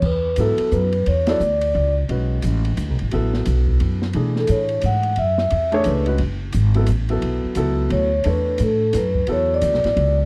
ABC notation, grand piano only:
X:1
M:3/4
L:1/8
Q:"Swing" 1/4=175
K:Emix
V:1 name="Grand piano"
z2 [F,B,EA]3 z | z [F,B,EA] z4 | [G,CFB]4- [G,CFB] z | [F,B,EA]4- [F,B,EA] z |
[E,A,DG]4- [E,A,DG] z | z3 [A,DGc]2 [G,CFB] | z3 [F,B,EA] z [F,B,EA]- | [F,B,EA]2 [F,B,EA]3 z |
[A,DAc]4- [A,DAc] z | [F,B,EA]4- [F,B,EA] z |]